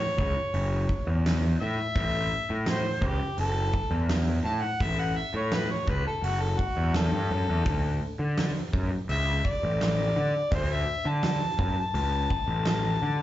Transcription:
Already playing: C#5
0.18 C#2, kick
0.54 F#1, open hi-hat
0.89 kick
1.07 E2
1.26 snare, open hi-hat
1.61 A2 E5
1.96 A1, kick, open hi-hat
2.50 A2
2.66 snare, open hi-hat
2.70 C5
3.01 C#2, kick
3.06 G4
3.38 F#1 A4, open hi-hat
3.74 kick
3.91 E2
4.09 snare, open hi-hat
4.45 A2 A5
4.62 F#5
4.80 A1 E5, kick, open hi-hat
4.99 F#5
5.16 E5
5.34 A2 C#5
5.51 B4, snare, open hi-hat
5.71 C#5
5.87 C#2 B4, kick
6.07 A4
6.22 F#1 F#4, open hi-hat
6.41 A4
6.59 F#4, kick
6.77 E2
6.94 A4, snare, open hi-hat
7.12 G2
7.31 F#2
7.49 E2
7.66 D2, kick, open hi-hat
8.19 D3
8.37 snare, open hi-hat
8.73 F#2, kick
9.09 C#2 E5, open hi-hat
9.45 D5, kick
9.63 A1
9.81 snare, open hi-hat
10.16 D3
10.51 D2 C5, kick, open hi-hat
10.72 E5
11.05 D3 A5
11.23 snare, open hi-hat
11.59 F#2, kick
11.80 A5
11.94 C#2, open hi-hat
12.30 kick
12.48 A1
12.65 A5, snare, open hi-hat
13.02 D3

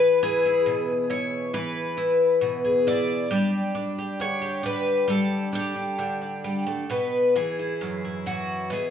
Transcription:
Already playing: E3 B4
0.23 E4 G#4
0.45 E4
0.66 B2
1.10 E4 C#5
1.54 E3 B4
1.97 E4
2.41 B2
2.65 G#4
2.87 E4 D5
3.31 G3 D4 G4
3.75 D4
3.98 G4
4.20 D3 C#5
4.41 G4
4.63 D4 B4
5.08 G3 A4
5.53 D4 G4
5.76 D4
5.98 D3
6.21 D4
6.44 G3
6.66 A3
6.90 B2 B4
7.36 E3 G#4
7.59 E4
7.81 F#2
8.05 E4
8.26 E3 F#4
8.70 B2 G#4

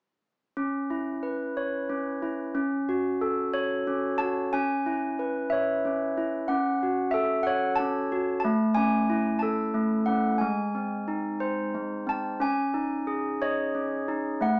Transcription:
0.57 C#4
0.90 E4
1.23 B4
1.57 C#5
1.89 C#4
2.22 E4
2.55 C#4
2.89 F#4
3.21 A4
3.54 C#5
3.87 C#4
4.18 F#4 A5
4.53 C#4 G#5
4.86 E4
5.19 B4
5.50 C#5 E5
5.85 C#4
6.17 E4
6.48 C#4 F#5
6.83 F#4
7.11 A4 E5
7.43 C#5 F#5
7.76 A5
7.80 C#4
8.12 F#4
8.40 A5
8.45 A3
8.75 C#4 G#5
9.10 E4
9.39 A4 A5
9.74 A3
10.06 C#4 F#5
10.38 G#3 G#5
10.75 C4
11.08 D#4
11.40 C5
11.75 G#3
12.07 C4 A5
12.40 C#4 G#5
12.74 D#4
13.07 G#4
13.42 C#5 D#5
13.75 C#4
14.08 D#4
14.41 A3 F#5

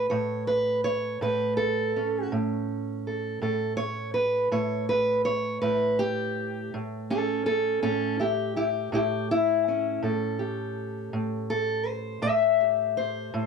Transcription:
Already playing: A2
0.10 A2 C#5
0.47 B4
0.84 C#5
1.21 A2 B4
1.57 A4
1.96 C#4
2.32 A2
3.07 A4
3.42 A2 A4
3.77 C#5
4.14 B4
4.52 A2 C#5
4.89 B4
5.25 C#5
5.62 A2 B4
5.99 G4
6.74 A2
7.10 C#4 A4
7.46 C#4 A4
7.83 A2 C#4 A4
8.20 E4 G4
8.56 E4 G4
8.92 A2 E4 G4
9.31 E4
9.68 C#4
10.03 A2 A4
10.39 G4
11.13 A2
11.50 A4
11.87 C5
12.22 A2 E5
12.61 G4
12.97 C5
13.34 A2

